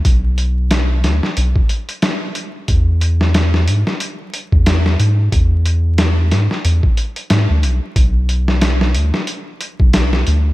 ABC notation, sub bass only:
X:1
M:4/4
L:1/16
Q:"Swing 16ths" 1/4=91
K:Emix
V:1 name="Sub bass" clef=bass
B,,,6 D,, z B,,, z6 z | E,,6 G,, z4 E,,3 G,,2 | E,,6 G,, z E,, z3 G,, D,, B,,, z | B,,,6 D,, z4 B,,,3 D,,2 |]